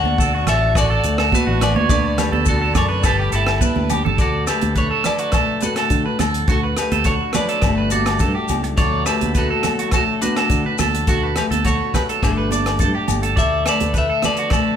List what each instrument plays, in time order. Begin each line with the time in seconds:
Already playing: steel-string acoustic guitar D3 D4 F#4, clean electric guitar F#4 D5 F#5, accordion D5 F#5 A5
0.04 fingered electric bass D2, high conga
0.18 steel-string acoustic guitar D4, clean electric guitar A4, kick, maracas
0.35 clean electric guitar F#4
0.47 fingered electric bass A1, steel-string acoustic guitar F#3, clean electric guitar A4 C#5 E5, cross-stick, closed hi-hat, low conga, low agogo, maracas
0.75 clean electric guitar F#4 A4 D5, steel-string acoustic guitar F#4, kick, cross-stick, low agogo, maracas
0.90 clean electric guitar A4
1.04 fingered electric bass D2, steel-string acoustic guitar A3, closed hi-hat, maracas
1.18 clean electric guitar A4, cross-stick, low agogo
1.32 steel-string acoustic guitar A2, clean electric guitar F#4 B4, kick, high conga, maracas
1.47 fingered electric bass A1, clean electric guitar F#4
1.61 steel-string acoustic guitar D4, clean electric guitar B4 D5, cross-stick, closed hi-hat, low conga, low agogo, maracas
1.75 fingered electric bass D2, clean electric guitar C#5, high conga
1.89 fingered electric bass D2, steel-string acoustic guitar D3 A4, clean electric guitar B4 D5, accordion B5, kick, low conga, maracas
2.18 clean electric guitar G4 B4, cross-stick, closed hi-hat, low conga, low agogo, maracas
2.32 fingered electric bass D2, clean electric guitar A4, high conga
2.45 steel-string acoustic guitar D4, clean electric guitar F#4 A4, kick, maracas
2.61 clean electric guitar A4
2.75 fingered electric bass F#2, steel-string acoustic guitar F#3, clean electric guitar A4 C#5 D5, kick, cross-stick, closed hi-hat, high conga, low conga, low agogo, maracas
2.89 clean electric guitar B4
3.03 fingered electric bass G1, steel-string acoustic guitar G2 A4, clean electric guitar G4 A4 B4, accordion G5, kick, cross-stick, low agogo, maracas
3.19 clean electric guitar G4
3.32 fingered electric bass G1, clean electric guitar E4 G4 A4, closed hi-hat, maracas
3.47 cross-stick, low agogo
3.61 steel-string acoustic guitar D4, clean electric guitar B4, kick, high conga, maracas
3.76 fingered electric bass D2, high conga
3.90 steel-string acoustic guitar G3, clean electric guitar G4, closed hi-hat, low conga, low agogo, maracas
4.05 fingered electric bass G1, clean electric guitar A4, low conga
4.18 fingered electric bass D2, steel-string acoustic guitar D3, clean electric guitar F#4 A4 D5, kick, closed hi-hat, maracas
4.47 steel-string acoustic guitar A3, clean electric guitar G4 A4 B4, cross-stick, closed hi-hat, low agogo, maracas
4.61 fingered electric bass D2, closed hi-hat, high conga, maracas
4.76 steel-string acoustic guitar D4, clean electric guitar A4 B4 C#5, kick, closed hi-hat, maracas
4.91 clean electric guitar A4
5.04 steel-string acoustic guitar F#3, clean electric guitar B4 D5, cross-stick, closed hi-hat, low conga, low agogo, maracas
5.19 clean electric guitar F#4, closed hi-hat
5.32 steel-string acoustic guitar A3, clean electric guitar A4, kick, cross-stick, closed hi-hat, low conga, low agogo, maracas
5.61 steel-string acoustic guitar A2, clean electric guitar F#4 A4 B4, closed hi-hat, high conga, maracas
5.76 clean electric guitar A4, cross-stick, closed hi-hat, low agogo, maracas
5.90 fingered electric bass D3, steel-string acoustic guitar D4, kick, closed hi-hat, maracas
6.06 clean electric guitar B4
6.19 fingered electric bass D2, clean electric guitar A4, cross-stick, closed hi-hat, high conga, low conga, low agogo, maracas
6.23 steel-string acoustic guitar F#4
6.34 closed hi-hat
6.48 fingered electric bass D2, clean electric guitar F#4, muted steel-string acoustic guitar stroke, kick, closed hi-hat, maracas
6.52 clean electric guitar A4
6.63 clean electric guitar B4
6.77 steel-string acoustic guitar A3, clean electric guitar G4 B4, cross-stick, closed hi-hat, low agogo, maracas
6.92 fingered electric bass D2, clean electric guitar A4, closed hi-hat, high conga, maracas
7.04 steel-string acoustic guitar D4, clean electric guitar F#4 A4 C#5, kick, closed hi-hat, maracas
7.33 steel-string acoustic guitar F#3, clean electric guitar B4 D5, cross-stick, closed hi-hat, high conga, low conga, low agogo, maracas
7.49 clean electric guitar A4, closed hi-hat
7.62 fingered electric bass G1, steel-string acoustic guitar G2 G3 A3, kick, cross-stick, closed hi-hat, low conga, low agogo, maracas
7.66 steel-string acoustic guitar D4 A4
7.78 clean electric guitar B4
7.90 steel-string acoustic guitar A3, clean electric guitar F#4 A4 D5, closed hi-hat, high conga, maracas
8.06 cross-stick, closed hi-hat, low agogo, maracas
8.19 fingered electric bass G2, steel-string acoustic guitar D4, clean electric guitar A4, kick, closed hi-hat, maracas
8.35 clean electric guitar G4
8.48 fingered electric bass C#2, steel-string acoustic guitar G3, closed hi-hat, high conga, low agogo, maracas
8.64 muted clean electric guitar stroke, closed hi-hat
8.77 fingered electric bass D2, steel-string acoustic guitar D3 F#3 A3 D4 F#4, clean electric guitar A4 C#5 D5, kick, closed hi-hat, maracas
9.06 steel-string acoustic guitar A3, clean electric guitar G4 A4 B4, cross-stick, closed hi-hat, low agogo, maracas
9.21 fingered electric bass D2, closed hi-hat, high conga, maracas
9.35 steel-string acoustic guitar D4, clean electric guitar F#4 A4 B4, kick, closed hi-hat, maracas
9.50 clean electric guitar A4
9.63 steel-string acoustic guitar F#3, cross-stick, closed hi-hat, high conga, low conga, low agogo, maracas
9.79 clean electric guitar F#4, closed hi-hat
9.91 clean electric guitar F#4 A4, kick, cross-stick, closed hi-hat, low conga, low agogo, maracas
9.96 steel-string acoustic guitar A3
10.21 steel-string acoustic guitar A2, clean electric guitar D4 F#4 B4, closed hi-hat, high conga, maracas
10.36 clean electric guitar A4, cross-stick, closed hi-hat, low agogo, maracas
10.50 fingered electric bass D3, steel-string acoustic guitar D4, kick, closed hi-hat, maracas
10.66 clean electric guitar B4
10.78 fingered electric bass D2, steel-string acoustic guitar F#4, clean electric guitar A4, cross-stick, closed hi-hat, high conga, low conga, low agogo, maracas
10.95 closed hi-hat
11.07 fingered electric bass D2, steel-string acoustic guitar D3, clean electric guitar F#4 A4, kick, closed hi-hat, maracas
11.23 clean electric guitar B4
11.36 steel-string acoustic guitar A3, clean electric guitar G4 B4, cross-stick, closed hi-hat, low conga, low agogo, maracas
11.51 fingered electric bass D2, clean electric guitar A4, closed hi-hat, high conga, maracas
11.65 steel-string acoustic guitar D4, clean electric guitar F#4 A4 C#5, kick, closed hi-hat, maracas
11.94 steel-string acoustic guitar F#3, clean electric guitar G4 B4, kick, cross-stick, closed hi-hat, high conga, low conga, low agogo, maracas
12.09 clean electric guitar A4, closed hi-hat, maracas
12.23 fingered electric bass G1, steel-string acoustic guitar G2 G3 A3 D4, clean electric guitar D4 A4, kick, cross-stick, closed hi-hat, low conga, low agogo, maracas
12.37 clean electric guitar B4
12.51 steel-string acoustic guitar A3, clean electric guitar D5, closed hi-hat, high conga, maracas
12.66 cross-stick, closed hi-hat, low agogo
12.79 fingered electric bass G2, steel-string acoustic guitar D4, clean electric guitar A4, kick, closed hi-hat, maracas
12.95 clean electric guitar G4
13.08 fingered electric bass G1, steel-string acoustic guitar G3, closed hi-hat, high conga, low conga, low agogo, maracas
13.23 clean electric guitar A4, closed hi-hat, maracas
13.36 fingered electric bass D2, steel-string acoustic guitar D3, clean electric guitar A4 D5 E5, kick, closed hi-hat, maracas
13.66 steel-string acoustic guitar A3, clean electric guitar A4 B4 D5, cross-stick, closed hi-hat, low agogo, maracas
13.80 fingered electric bass D2, closed hi-hat, high conga, maracas
13.94 steel-string acoustic guitar D4, clean electric guitar A4 B4, kick, closed hi-hat, maracas
13.98 clean electric guitar E5
14.10 clean electric guitar A4
14.22 clean electric guitar B4 D5, cross-stick, closed hi-hat, high conga, low conga, low agogo, maracas
14.37 clean electric guitar F#4, closed hi-hat
14.50 steel-string acoustic guitar A3, clean electric guitar A4, kick, cross-stick, closed hi-hat, low conga, low agogo, maracas